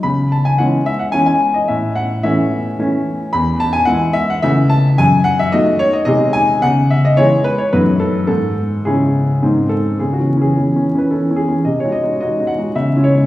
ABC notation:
X:1
M:3/4
L:1/16
Q:1/4=109
K:C#m
V:1 name="Grand piano"
b2 a g f2 e f g g2 d | e2 f2 e6 z2 | b2 a g f2 e f e2 a2 | g2 f e d2 c d d2 g2 |
f2 e d c2 B c B2 A2 | A4 G6 A2 | G F2 G4 B A2 G2 | d c d2 d2 f2 e2 c2 |]
V:2 name="Grand piano" clef=bass
C,4 [E,G,C]4 [E,G,C]4 | A,,4 [E,A,C]4 [E,A,C]4 | E,,4 [E,G,E]4 [C,E,A,E]4 | F,,4 [D,A,F]4 [^B,,D,G,G]4 |
C,4 [E,G,G]4 [F,,D,A,F]4 | G,,4 [C,CE]4 [G,,D,^B,D]4 | (3C,2 [E,C]2 [E,C]2 (3[E,C]2 [E,C]2 [E,C]2 (3[E,C]2 [E,C]2 [E,C]2 | (3^B,,2 [G,DF]2 [G,DF]2 (3[G,DF]2 [G,DF]2 [G,DF]2 (3C,2 [G,CE]2 [G,CE]2 |]